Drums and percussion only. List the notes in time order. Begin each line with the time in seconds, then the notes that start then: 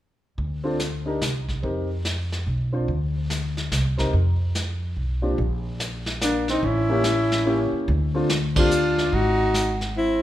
0.38 brush sweep, kick
0.80 snare, hi-hat pedal
1.22 snare, hi-hat pedal
1.49 kick, snare
1.63 brush sweep, kick
2.05 snare, hi-hat pedal
2.32 snare
2.88 brush sweep, kick
3.30 snare, hi-hat pedal
3.57 snare
3.72 snare, hi-hat pedal
3.99 kick, snare
4.13 brush sweep, kick
4.55 snare, hi-hat pedal
5.38 brush sweep, kick
5.80 snare, hi-hat pedal
6.06 snare
6.21 snare, hi-hat pedal
6.48 snare
6.62 brush sweep, kick
7.04 snare, hi-hat pedal
7.32 snare
7.88 brush sweep, kick
8.30 snare, hi-hat pedal
8.56 kick, ride
8.71 hi-hat pedal
8.98 snare
9.13 brush sweep, kick
9.54 snare, hi-hat pedal
9.81 snare